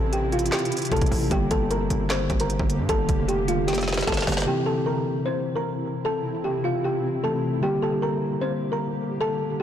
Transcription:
Already playing: A1 C3 E3 C4 E4 A4 A5
0.13 G4 G5, closed hi-hat
0.32 F4 F5, closed hi-hat
0.39 closed hi-hat
0.46 closed hi-hat
0.52 G4 G5, snare, clap, closed hi-hat
0.59 closed hi-hat
0.65 closed hi-hat
0.72 closed hi-hat
0.77 closed hi-hat
0.78 closed hi-hat
0.82 closed hi-hat
0.85 closed hi-hat
0.87 closed hi-hat
0.91 G1 C3 E3 A3 E4 A4 A5, kick, closed hi-hat
0.96 closed hi-hat
1.01 A1, kick, closed hi-hat
1.06 closed hi-hat
1.11 A1, open hi-hat
1.29 G1 D3 G3 A#3 G4 G5, kick, closed hi-hat
1.51 G1 A4 A5, kick, closed hi-hat
1.71 A#4 A#5, closed hi-hat
1.90 G1, closed hi-hat
2.10 C4 C5, snare, clap, closed hi-hat
2.30 G1, kick, closed hi-hat
2.40 A#4 A#5, closed hi-hat
2.50 closed hi-hat
2.60 G1, kick
2.70 closed hi-hat
2.79 G2
2.89 G1 A4 A5, kick, closed hi-hat
3.09 F1, kick, closed hi-hat
3.28 G4 G5, closed hi-hat
3.48 F4 F5, closed hi-hat
3.68 G4 G5, snare, closed hi-hat
3.73 snare, closed hi-hat
3.78 snare, closed hi-hat
3.83 snare
3.88 snare, closed hi-hat
3.93 snare, closed hi-hat
3.98 snare, closed hi-hat
4.03 snare
4.07 G1 A4 A5, kick, snare, closed hi-hat
4.12 snare, closed hi-hat
4.17 snare, closed hi-hat
4.22 snare
4.27 G1 D3 G3 A#3 G4, snare, closed hi-hat, open hi-hat
4.32 snare, closed hi-hat
4.37 snare, closed hi-hat
4.42 C3, snare
4.47 C3 E3 C4 E4 G4 G5
4.66 A4 A5
4.86 A#4 A#5
5.26 C4 C5
5.56 A#4 A#5
6.05 A4 A5
6.44 G4 G5
6.64 F4 F5
6.84 G4 G5
7.23 C3 E3 A3 C4 A4 A5
7.61 D3 G3 A#3 G4 G5
7.82 A4 A5
8.02 A#4 A#5
8.41 C4 C5
8.72 A#4 A#5
9.21 A4 A5

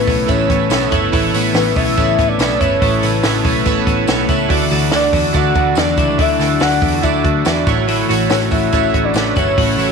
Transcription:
Already playing: A2 C#3 E3 A3 B3 C#4 E4 A4 B4 C#5 E5
0.06 B1 B3 E4 A4 B4 C#5, kick, hi-hat pedal, open hi-hat, tambourine
0.11 E4 A4
0.26 A1 B3 C#4 E4 A4 B4 C#5 E5, kick, hi-hat pedal, open hi-hat, tambourine
0.30 E4 A4 C#5
0.49 A1 B3 E4 A4 B4 C#5, kick, hi-hat pedal, open hi-hat, tambourine
0.53 E4
0.70 B1 A3 B3 C#4 E4 A4 B4 E5, snare, hi-hat pedal, open hi-hat, tambourine
0.74 C#5
0.91 G1 E4 A4 B4 C#5, kick, hi-hat pedal, open hi-hat, tambourine
0.95 E4
1.12 A1 A2 A3 B3 E4 F#4 A4 B4 C#5, kick, hi-hat pedal, open hi-hat, tambourine
1.16 C#5
1.33 A1 B3 E4 A4 B4 C#5, hi-hat pedal, open hi-hat, tambourine
1.54 A1 A3 B3 C#4 E4 A4 B4 C#5, snare, hi-hat pedal, open hi-hat, tambourine
1.76 B1 B3 E4 A4 B4 C#5 E5, kick, hi-hat pedal, open hi-hat, tambourine
1.80 E4
1.97 A1 B3 C#4 E4 A4 B4 C#5, kick, hi-hat pedal, open hi-hat, tambourine
2.18 A1 B3 E4 A4 B4 C#5, kick, hi-hat pedal, open hi-hat, tambourine
2.28 D5
2.38 B1 A3 B3 C#4 E4 A4 B4 C#5 E5, snare, hi-hat pedal, open hi-hat, tambourine
2.59 G1 E4 A4 B4 C#5, kick, hi-hat pedal, open hi-hat, tambourine
2.64 E4
2.81 A1 A2 A3 B3 E4 A4 B4 C#5, kick, hi-hat pedal, open hi-hat, tambourine
3.02 A1 B3 E4 A4 B4 C#5, hi-hat pedal, open hi-hat, tambourine
3.23 A1 A3 B3 C#4 E4 A4 B4 C#5, snare, hi-hat pedal, open hi-hat, tambourine
3.44 B1 B3 E4 A4 B4 C#5, kick, hi-hat pedal, open hi-hat, tambourine
3.65 A1 B3 C#4 E4 A4 B4 C#5, kick, hi-hat pedal, open hi-hat, tambourine
3.70 C#5
3.86 A1 B3 E4 A4 B4 C#5 A5, kick, hi-hat pedal, open hi-hat, tambourine
3.91 E4
4.07 B1 A3 B3 C#4 E4 A4 B4 C#5 F#5, snare, hi-hat pedal, open hi-hat, tambourine
4.12 C#5
4.28 C#2 E4 A4 B4 C#5 E5, kick, hi-hat pedal, open hi-hat, tambourine
4.49 D2 D3 E3 F#3 A3 D4 E4 F#4 A4 D5, kick, hi-hat pedal, open hi-hat, tambourine
4.53 D5
4.71 D2 A3 D4 E4 F#4 A4 D5, hi-hat pedal, open hi-hat, tambourine
4.92 D2 D3 E3 A3 D4 E4 F#4 A4 D5, snare, hi-hat pedal, open hi-hat, tambourine
5.13 E2 A3 D4 E4 F#4 A4 D5, kick, hi-hat pedal, open hi-hat, tambourine
5.33 D2 A3 D4 E4 F#4 A4 D5 F#5, kick, hi-hat pedal, open hi-hat, tambourine
5.37 D5
5.54 D2 D4 E4 F#4 A4 D5, kick, hi-hat pedal, open hi-hat, tambourine
5.59 A3
5.75 E2 D3 E3 A3 D4 E4 F#4 A4 D5, snare, hi-hat pedal, open hi-hat, tambourine
5.97 C#2 A3 D4 E4 F#4 A4 D5, kick, hi-hat pedal, open hi-hat, tambourine
6.18 D2 D3 E3 A3 D4 E4 F#4 A4 D5 E5, kick, hi-hat pedal, open hi-hat, tambourine
6.39 D2 A3 D4 E4 F#4 A4 D5, snare, hi-hat pedal, open hi-hat, tambourine
6.60 D2 D3 E3 A3 D4 E4 F#4 A4 D5 F#5, snare, hi-hat pedal, open hi-hat, tambourine
6.81 E2 A3 D4 E4 F#4 A4 D5, kick, hi-hat pedal, open hi-hat, tambourine
6.93 F#4
7.02 D2 A3 D4 E4 F#4 A4 D5 E5, kick, hi-hat pedal, open hi-hat, tambourine
7.06 D5
7.24 D2 A3 D4 E4 F#4 A4 D5, kick, hi-hat pedal, open hi-hat
7.44 E2 D3 E3 A3 D4 E4 F#4 A4 D5, snare, hi-hat pedal, open hi-hat, tambourine
7.66 A1 A2 C#3 E4 F#4 A4 C#5, kick, hi-hat pedal, open hi-hat, tambourine
7.87 A2 A3 E4 F#4 C#5, hi-hat pedal, open hi-hat, tambourine
8.09 A1 E4 F#4 A4 C#5, hi-hat pedal, open hi-hat, tambourine
8.29 A1 A3 C#4 E4 F#4 A4 C#5, snare, hi-hat pedal, open hi-hat, tambourine
8.51 A1 E4 F#4 A4 C#5 E5, kick, hi-hat pedal, open hi-hat, tambourine
8.72 A1 A3 C#4 E4 F#4 A4 C#5, kick, hi-hat pedal, open hi-hat, tambourine
8.77 F#4 C#5
8.94 A1 E4 F#4 A4 C#5, kick, hi-hat pedal, open hi-hat
9.04 D5
9.14 A1 A3 C#4 E4 F#4 C#5, snare, hi-hat pedal, open hi-hat, tambourine
9.18 A4 B4
9.36 G1 E4 F#4 A4 C#5, kick, hi-hat pedal, open hi-hat, tambourine
9.40 E4
9.57 A1 A2 A3 E4 F#4 A4 C#5, kick, hi-hat pedal, open hi-hat
9.78 A1 E4 F#4 A4 C#5, hi-hat pedal, open hi-hat, tambourine
9.88 F#4

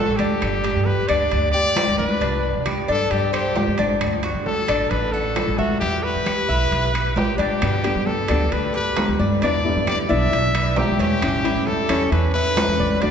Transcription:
Already playing: F#4 A4
0.08 A1
0.17 D2 D4 G4, high conga, high timbale
0.42 G1, high conga, high timbale, claves
0.64 G4, high conga, high timbale
0.76 G2
0.85 B4, high conga, low timbale
1.08 D2 D4 D5, high conga, high timbale, claves
1.31 D2, high conga, high timbale
1.52 G4 D5, high conga
1.76 high conga, high timbale, low timbale, claves
1.88 D2
1.98 G1 B4 D5, high conga
2.21 C2 D4, high conga, high timbale
2.44 high conga
2.55 C3
2.66 G4, high conga, high timbale, low timbale, claves
2.88 G2 D4 A4, high conga
3.11 G2 G4, high conga, high timbale
3.33 G4 C5, high conga, high timbale, claves
3.56 G4, high conga, low timbale
3.68 G2
3.78 A1 D4, high conga, high timbale
4.01 D2, high conga, high timbale, claves
4.23 F#4, high conga, high timbale
4.35 D3
4.46 A4, high conga, low timbale
4.68 A1 D4, high conga, high timbale, claves
4.90 A1 B4, high conga, high timbale
5.12 F#4 A4, high conga
5.36 high conga, high timbale, low timbale, claves
5.47 A1
5.58 D2 F#4 E5, high conga
5.80 E2 E4 G4, high timbale
6.03 B4, high conga
6.15 E3
6.26 G4, high conga, high timbale, low timbale, claves
6.49 B1 E4, high conga
6.71 B1, high conga, high timbale
6.94 B4, high conga, high timbale, claves
7.16 A1 G4, high conga, low timbale
7.38 G1 D4 G4, high conga, high timbale
7.61 G2 B2 D3 G3 B3 G4, high conga, high timbale, claves
7.84 D3 G3 B3 G4, high conga, high timbale
7.95 G3
8.06 A4, high conga, low timbale
8.28 D2 D3 G3 B3 D4 G4, high conga, high timbale, claves
8.52 D2 B4, muted nylon-string guitar stroke, high conga, high timbale
8.74 G4 B4, high conga
8.97 D3 G3 B3 G4, high conga, high timbale, low timbale, claves
9.09 D2
9.19 G2 D5, high conga
9.42 E2 B2 D3 G3 B3 D4 E4 D5, high conga, high timbale
9.64 D3 G3 B3 E4, high conga
9.76 E3
9.87 G4 D5, high conga, high timbale, low timbale, claves
10.09 B1 D3 G3 B3 D4 E4 E5, high conga
10.32 B1, muted nylon-string guitar stroke, high conga, high timbale
10.55 B4, high conga, high timbale, claves
10.76 D3 G3 B3 E4 G4, high conga, low timbale
10.89 B1
10.99 E2 C#4 G4, high conga, high timbale
11.21 A1 E3 G3 C#4 E4, high conga, high timbale, claves
11.44 G3 C#4 E4, high conga, high timbale
11.55 A2
11.67 A4, high conga, low timbale
11.89 E2 G3 C#4 E4, high conga, high timbale, claves
12.11 E2 B4, muted nylon-string guitar stroke, high conga, high timbale
12.34 E4 B4, high conga
12.56 E3 G3 C#4 E4, high conga, high timbale, low timbale, claves
12.68 E2
12.79 A1 D5, high conga
13.01 D2 D3 A3 D4 F#4 D5, high conga, high timbale

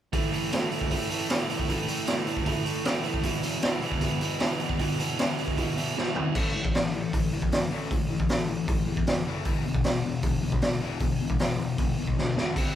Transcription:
0.13 A2 E3 A3, kick, open hi-hat
0.32 A2 E3 A3, open hi-hat
0.52 A2 E3 A3, snare, open hi-hat
0.71 A2 E3 A3, open hi-hat
0.81 kick
0.91 A2 E3 A3, kick, open hi-hat
1.10 A2 E3 A3, open hi-hat
1.30 A2 E3 A3, snare, open hi-hat
1.49 A2 E3 A3, open hi-hat
1.59 kick
1.69 A2 E3 A3, kick, open hi-hat
1.88 A2 E3 A3, open hi-hat
2.07 A2 E3 A3, snare, open hi-hat
2.27 A2 E3 A3, open hi-hat
2.37 kick
2.46 A2 E3 A3, kick, open hi-hat
2.65 A2 E3 A3, open hi-hat
2.85 A2 E3 A3, snare, open hi-hat
3.04 A2 E3 A3, open hi-hat
3.14 kick
3.23 E2 B2 E3, kick, open hi-hat
3.43 E2 B2 E3, open hi-hat
3.62 E2 B2 E3, snare, open hi-hat
3.82 E2 B2 E3, open hi-hat
3.92 kick
4.01 E2 B2 E3, kick, open hi-hat
4.21 E2 B2 E3, open hi-hat
4.40 E2 B2 E3, snare, open hi-hat
4.60 E2 B2 E3, open hi-hat
4.69 kick
4.79 E2 B2 E3, kick, open hi-hat
4.99 E2 B2 E3, open hi-hat
5.18 E2 B2 E3, snare, open hi-hat
5.38 E2 B2 E3, open hi-hat
5.48 kick
5.57 E2 B2 E3, kick, open hi-hat
5.77 E2 B2 E3, open hi-hat
5.95 E2 B2 E3, snare
6.15 E2 B2 E3, floor tom
6.35 A1 A2 E3 A3, kick, crash
6.55 A1 A2 E3
6.65 kick
6.74 A1 A2 E3, snare, open hi-hat
6.94 A1 A2 E3
7.13 A1 A2 E3, kick, open hi-hat
7.32 E2 A2 E3
7.42 kick
7.52 F#1 A2 E3, snare, open hi-hat
7.71 A1 A2 E3 A3
7.91 A1 A2 E3, kick, open hi-hat
8.10 A1 A2 E3
8.20 kick
8.29 A1 A2 E3, snare, open hi-hat
8.48 A1 A2 E3
8.67 A1 A2 E3, kick, open hi-hat
8.87 E2 A2 E3
8.97 kick
9.07 F#1 A2 E3, snare, open hi-hat
9.26 F#1 A2 E3 A3
9.45 E1 E2 B2 E3, kick, open hi-hat
9.65 E1 E2 B2
9.75 kick
9.84 E1 E2 B2, snare, open hi-hat
10.04 E1 E2 B2
10.22 E1 E2 B2, kick, open hi-hat
10.42 B1 E2 B2
10.52 kick
10.62 D2 E2 B2, snare, open hi-hat
10.81 E1 E2 B2 E3
11.00 E1 E2 B2, kick, open hi-hat
11.20 E1 E2 B2
11.30 kick
11.39 E1 E2 B2, snare, open hi-hat
11.58 E1 E2 B2
11.77 E1 E2 B2, kick, open hi-hat
11.98 B1 E2 B2
12.07 kick
12.17 D2 E2 B2, snare
12.36 E1 E2 B2 E3, snare
12.55 C2 C3 G3 C4, kick, open hi-hat, crash

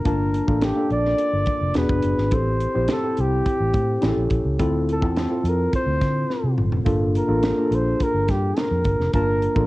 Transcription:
Already playing: A#3 D4 F4 A4
0.05 G1 A#3 D4 F4 A#4 A5, kick, closed hi-hat
0.34 closed hi-hat
0.47 A1 A#3 D4 F4 A4, kick
0.61 G4, snare, closed hi-hat
0.76 A#3 D4 F4 A4
0.90 A#1 D5, closed hi-hat
1.05 snare
1.18 closed hi-hat
1.33 G1
1.46 kick, closed hi-hat
1.61 F1
1.74 E1 B3 D4 F#4 G#4 B4, snare, closed hi-hat
1.89 F#1, kick
2.02 F#1, closed hi-hat
2.18 G#1, snare
2.31 A1 C4 E4 G4 A4 C5, kick, closed hi-hat
2.60 closed hi-hat
2.75 A#1 C4 E4 G4 C5
2.88 snare, closed hi-hat
2.92 A4
3.03 C4 E4 G4 A4
3.17 C2 G4, closed hi-hat
3.46 kick, closed hi-hat
3.60 A1
3.74 A2, kick, closed hi-hat
4.01 A1 C#4 E4 G4 G#4, snare, closed hi-hat
4.09 A4
4.17 A#1
4.30 A#1, kick, closed hi-hat
4.45 C#2
4.59 D2 C4 E4 F4 A4, kick, closed hi-hat
4.89 A4, closed hi-hat
5.01 E2 C4 E4 F4 A4, kick
5.16 snare, closed hi-hat
5.30 C4 E4 F4 A4
5.44 F2, closed hi-hat
5.48 A#4
5.73 C5, kick, closed hi-hat
5.86 D2
6.01 D3, kick, snare, closed hi-hat
6.30 snare
6.44 C3
6.58 G1, mid tom
6.72 F1, floor tom
6.85 G1 A#3 D4 F4 A4, kick, closed hi-hat
7.15 A#4, closed hi-hat
7.28 A1 A#3 D4 F4 A4
7.43 snare, closed hi-hat
7.57 A#3 D4 F4 G#4
7.65 A4
7.71 A#1 C5, closed hi-hat
8.00 A#4, kick, closed hi-hat
8.14 G1
8.28 G2 G4, kick, snare, closed hi-hat
8.57 A#4, snare, closed hi-hat
8.71 F2
8.84 G1, kick, closed hi-hat
9.00 F1, snare
9.13 G1 A#3 D4 F4 A#4 A5, kick, closed hi-hat
9.42 closed hi-hat
9.55 A1 A#3 D4 F4 A4, kick

